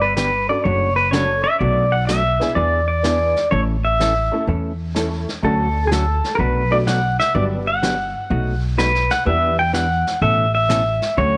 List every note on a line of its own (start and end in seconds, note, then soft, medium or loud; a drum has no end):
0.00 0.46 G1 medium
0.00 0.15 B4 medium
0.17 0.29 D3 medium
0.17 0.29 G3 medium
0.17 0.30 B3 medium
0.17 0.30 D4 medium
0.17 0.30 G4 medium
0.17 0.49 B4 medium
0.17 snare medium
0.17 hi-hat pedal medium
0.49 0.63 C#4 medium
0.49 0.63 D4 medium
0.49 0.64 F#4 medium
0.49 0.64 A4 medium
0.49 0.64 D5 medium
0.64 1.42 F#1 medium
0.64 0.88 C#3 medium
0.64 0.88 F#3 medium
0.64 0.89 A3 medium
0.64 0.89 D4 medium
0.64 0.89 F#4 medium
0.64 0.96 C#5 medium
0.64 brush sweep soft
0.96 1.13 B4 medium
1.11 1.25 C#3 medium
1.11 1.25 F#3 medium
1.11 1.25 A3 medium
1.11 1.42 C#4 medium
1.11 1.42 D4 medium
1.11 1.26 D4 medium
1.11 1.42 F#4 medium
1.11 1.26 F#4 medium
1.11 1.42 A4 medium
1.11 1.42 C#5 medium
1.11 snare medium
1.11 hi-hat pedal medium
1.44 1.59 E5 loud
1.59 2.37 B1 medium
1.59 1.84 B2 medium
1.59 1.84 F#3 medium
1.59 1.84 A3 medium
1.59 1.84 D4 medium
1.59 1.85 F#4 medium
1.59 1.94 D5 loud
1.59 brush sweep soft
1.92 2.07 F#5 medium
2.07 2.21 B2 medium
2.07 2.21 F#3 medium
2.07 2.21 A3 medium
2.07 2.21 D4 medium
2.07 2.21 F#4 medium
2.07 2.57 E5 medium
2.07 snare medium
2.07 hi-hat pedal medium
2.40 2.54 B3 medium
2.40 2.54 D4 medium
2.40 2.55 E4 medium
2.40 2.55 G#4 medium
2.40 snare soft
2.55 3.33 E2 medium
2.55 2.80 E3 medium
2.55 2.80 B3 medium
2.55 2.80 D4 medium
2.55 2.80 G#4 medium
2.55 2.86 D5 medium
2.55 brush sweep soft
2.88 3.51 D5 medium
3.03 3.17 E3 medium
3.03 3.33 B3 medium
3.03 3.17 B3 medium
3.03 3.33 D4 medium
3.03 3.17 D4 medium
3.03 3.34 E4 medium
3.03 3.34 G#4 medium
3.03 3.17 G#4 medium
3.03 snare medium
3.03 hi-hat pedal medium
3.36 snare soft
3.51 4.29 A1 loud
3.51 3.75 E3 medium
3.51 3.75 A3 medium
3.51 3.75 C#4 medium
3.51 3.75 E4 medium
3.51 3.76 A4 medium
3.51 3.60 C#5 loud
3.51 brush sweep soft
3.85 4.44 E5 medium
4.00 4.12 E3 medium
4.00 4.12 A3 medium
4.00 4.13 C#4 medium
4.00 4.13 E4 medium
4.00 4.13 A4 medium
4.00 snare medium
4.00 hi-hat pedal medium
4.32 4.46 A3 medium
4.32 4.46 C#4 medium
4.32 4.46 E4 medium
4.32 4.47 A4 medium
4.47 5.24 E2 medium
4.47 4.71 E3 medium
4.47 4.71 A3 medium
4.47 4.71 C#4 medium
4.47 4.72 E4 medium
4.47 4.72 A4 medium
4.47 brush sweep soft
4.95 5.08 E3 medium
4.95 5.24 A3 medium
4.95 5.08 A3 medium
4.95 5.25 C#4 medium
4.95 5.08 C#4 medium
4.95 5.25 E4 medium
4.95 5.08 E4 medium
4.95 5.25 A4 medium
4.95 5.08 A4 medium
4.95 snare medium
4.95 hi-hat pedal medium
5.29 snare soft
5.42 6.20 D2 medium
5.42 5.67 D3 medium
5.42 5.67 F#3 medium
5.42 5.72 A3 medium
5.42 5.67 A3 medium
5.42 5.73 C#4 soft
5.42 5.67 C#4 medium
5.42 5.73 D4 medium
5.42 5.73 F#4 medium
5.42 5.67 F#4 medium
5.42 5.87 A4 medium
5.42 brush sweep soft
5.87 6.04 D3 medium
5.87 5.92 G#4 medium
5.92 6.04 F#3 medium
5.92 6.04 A3 medium
5.92 6.04 C#4 medium
5.92 6.04 F#4 medium
5.92 6.33 A4 medium
5.92 snare medium
5.92 hi-hat pedal medium
6.24 snare soft
6.35 7.15 B1 medium
6.35 6.62 B2 soft
6.35 6.39 A#4 medium
6.35 brush sweep soft
6.39 6.63 F#3 medium
6.39 6.63 A3 medium
6.39 6.63 D4 medium
6.39 6.63 F#4 medium
6.39 6.73 B4 loud
6.71 6.85 A3 medium
6.71 6.85 B3 medium
6.71 6.86 D4 medium
6.71 6.86 F#4 medium
6.71 6.77 D5 medium
6.87 6.99 B2 medium
6.87 6.99 F#3 medium
6.87 6.99 A3 medium
6.87 7.00 D4 medium
6.87 7.00 F#4 medium
6.87 7.19 F#5 medium
6.87 snare medium
6.87 hi-hat pedal medium
7.20 7.34 E5 medium
7.20 snare soft
7.34 8.11 G1 medium
7.34 7.58 D3 medium
7.34 7.58 F#3 medium
7.34 7.64 G3 medium
7.34 7.64 B3 medium
7.34 7.58 B3 medium
7.34 7.64 D4 medium
7.34 7.59 D4 medium
7.34 7.65 F#4 medium
7.34 7.59 G4 medium
7.34 7.44 D5 loud
7.34 brush sweep medium
7.67 8.59 F#5 medium
7.83 7.95 D3 medium
7.83 7.95 F#3 medium
7.83 7.95 B3 medium
7.83 7.95 D4 medium
7.83 7.95 G4 medium
7.83 snare medium
7.83 hi-hat pedal medium
8.30 9.07 B1 medium
8.30 8.54 B2 medium
8.30 8.54 F#3 medium
8.30 8.54 A3 medium
8.30 8.54 D#4 medium
8.30 8.54 F#4 medium
8.30 brush sweep medium
8.78 8.90 B2 medium
8.78 8.90 F#3 medium
8.78 8.91 A3 medium
8.78 8.91 D#4 medium
8.78 8.91 F#4 medium
8.78 9.12 B4 medium
8.78 snare medium
8.78 hi-hat pedal medium
8.95 snare soft
9.10 9.26 F#5 loud
9.10 snare soft
9.25 10.03 E2 medium
9.25 9.49 E3 medium
9.25 9.55 G3 medium
9.25 9.49 B3 medium
9.25 9.55 B3 medium
9.25 9.50 D4 medium
9.25 9.56 D4 medium
9.25 9.56 E4 medium
9.25 9.50 G4 medium
9.25 9.59 E5 loud
9.25 brush sweep medium
9.59 9.73 G5 medium
9.73 9.86 E3 medium
9.73 9.86 B3 medium
9.73 9.86 D4 medium
9.73 9.87 G4 medium
9.73 10.22 F#5 loud
9.73 snare medium
9.73 hi-hat pedal medium
10.07 snare soft
10.22 10.98 A1 medium
10.22 10.45 B2 medium
10.22 10.45 E3 medium
10.22 10.45 A3 medium
10.22 10.45 C#4 medium
10.22 10.45 A4 medium
10.22 10.53 E5 medium
10.22 brush sweep soft
10.55 11.19 E5 medium
10.69 10.82 B2 medium
10.69 10.82 E3 medium
10.69 10.82 A3 medium
10.69 10.82 C#4 medium
10.69 10.82 A4 medium
10.69 snare medium
10.69 hi-hat pedal medium
11.02 snare soft
11.17 11.37 D2 medium
11.17 11.37 D3 medium
11.17 11.37 F#3 medium
11.17 11.37 A3 medium
11.17 11.37 C#4 medium
11.17 11.37 F#4 medium
11.17 11.37 C#5 loud
11.17 brush sweep soft